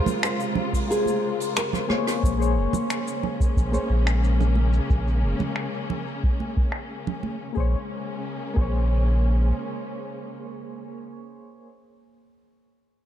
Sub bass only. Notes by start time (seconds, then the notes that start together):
2.23 A#1
2.56 F1
3.56 A#1
3.90 A#1
4.90 A#1
5.24 F1
7.57 A#1
8.57 A#1